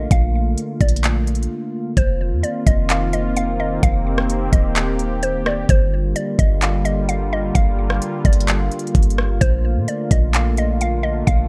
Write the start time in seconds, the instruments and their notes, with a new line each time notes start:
Already playing: analog synth pad D3 A3 A#3 F4
0.11 808-style bass A#1, synth pluck F5, kick, closed hi-hat
0.58 closed hi-hat
0.81 808-style bass A#1, synth pluck D5, kick, closed hi-hat
0.89 closed hi-hat
0.96 closed hi-hat
1.04 clap, closed hi-hat
1.27 closed hi-hat
1.35 closed hi-hat
1.43 closed hi-hat
1.97 808-style bass F1, analog synth pad D#3 A#3 C4 F4, synth pluck C5, kick, closed hi-hat
2.32 808-style bass F2
2.43 synth pluck D5, closed hi-hat
2.67 808-style bass F1, synth pluck D#5, kick, closed hi-hat
2.90 synth pluck F5, clap, closed hi-hat
3.13 synth pluck D#5, closed hi-hat
3.37 synth pluck F5, closed hi-hat
3.60 synth pluck D#5
3.83 808-style bass F1, analog synth pad G4, synth pluck F5, kick, closed hi-hat
4.18 cross-stick
4.30 closed hi-hat
4.53 808-style bass D#1, synth pluck D#5, kick, closed hi-hat
4.76 clap, closed hi-hat
4.99 closed hi-hat
5.23 synth pluck C5, closed hi-hat
5.46 synth pluck D5, cross-stick
5.69 808-style bass G1, analog synth pad D3 G3 A#3 F4, synth pluck C5, kick, closed hi-hat
6.16 synth pluck D5, closed hi-hat
6.39 808-style bass G1, synth pluck D#5, kick, closed hi-hat
6.62 synth pluck F5, clap, closed hi-hat
6.85 synth pluck D#5, closed hi-hat
7.09 synth pluck F5, closed hi-hat
7.33 synth pluck D#5
7.55 808-style bass G1, synth pluck F5, kick, closed hi-hat
7.90 cross-stick
8.02 closed hi-hat
8.25 808-style bass G1, synth pluck D5, kick, closed hi-hat
8.33 closed hi-hat
8.40 closed hi-hat
8.48 clap, closed hi-hat
8.72 closed hi-hat
8.79 closed hi-hat
8.87 closed hi-hat
8.95 808-style bass G1, kick, closed hi-hat
9.03 closed hi-hat
9.10 closed hi-hat
9.18 cross-stick
9.41 808-style bass A#1, analog synth pad D3 A3, synth pluck C5, kick, closed hi-hat
9.76 808-style bass A#2
9.88 synth pluck D5, closed hi-hat
10.11 808-style bass A#1, synth pluck D#5, kick, closed hi-hat
10.34 synth pluck F5, clap, closed hi-hat
10.57 synth pluck D#5, closed hi-hat
10.81 synth pluck F5, closed hi-hat
11.03 synth pluck D#5
11.27 808-style bass A#1, synth pluck F5, kick, closed hi-hat